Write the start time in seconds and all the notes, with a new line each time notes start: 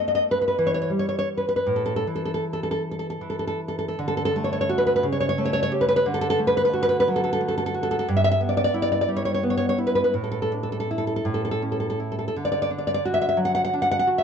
Already playing: A3
0.08 D#5
0.15 D#5
0.31 B4
0.41 B4
0.48 B4
0.58 E3
0.67 C#5
0.74 C#5
0.82 C#5
0.90 G3
0.99 C#5
1.09 C#5
1.19 C#5
1.37 B4
1.49 B4
1.56 B4
1.67 A2
1.76 A4
1.86 A4
1.96 A4
2.07 E3
2.15 A4
2.25 A4
2.34 A4
2.53 A4
2.63 A4
2.71 A4
2.91 A4
2.99 A4
3.10 A4
3.21 E3
3.30 A4
3.39 A4
3.47 A4
3.68 A4
3.79 A4
3.88 A4
3.99 D3
4.08 A4
4.17 A4
4.25 A4
4.36 A3
4.44 C#5
4.53 C#5
4.61 C#5
4.69 F#4
4.78 B4
4.86 B4
4.96 B4
5.03 C#3
5.12 C#5
5.20 C#5
5.29 C#5
5.38 A3
5.45 C#5
5.53 C#5
5.63 C#5
5.72 G4
5.81 B4
5.89 B4
5.96 B4
6.06 D3
6.14 A4
6.21 A4
6.30 A4
6.39 A3
6.47 B4
6.57 B4
6.65 B4
6.73 F#4
6.83 B4
6.89 B4
7.00 B4
7.08 F#3
7.16 A4
7.24 A4
7.33 A4
7.41 A3
7.48 A4
7.58 A4
7.66 A4
7.74 F#4
7.83 A4
7.91 A4
7.99 A4
8.08 G2
8.17 E5
8.24 E5
8.31 E5
8.41 B3
8.49 D5
8.57 D5
8.64 D5
8.74 E4
8.82 D5
8.92 D5
9.01 D5
9.09 G3
9.16 C#5
9.25 C#5
9.34 C#5
9.43 B3
9.50 C#5
9.57 C#5
9.69 C#5
9.78 E4
9.87 B4
9.95 B4
10.04 B4
10.14 A2
10.24 A4
10.31 A4
10.42 A4
10.52 D4
10.63 A4
10.72 A4
10.80 A4
10.91 E4
10.98 A4
11.07 A4
11.16 A4
11.25 A2
11.34 A4
11.45 A4
11.51 A4
11.62 C#4
11.72 A4
11.80 A4
11.90 A4
12.00 E4
12.12 A4
12.19 A4
12.28 A4
12.36 D3
12.45 D5
12.52 D5
12.62 D5
12.70 D4
12.78 D5
12.87 D5
12.94 D5
13.05 F#4
13.14 E5
13.22 E5
13.29 E5
13.37 F#3
13.45 F#5
13.55 F#5
13.64 F#5
13.73 D4
13.82 F#5
13.91 F#5
13.99 F#5
14.07 F#4
14.18 E5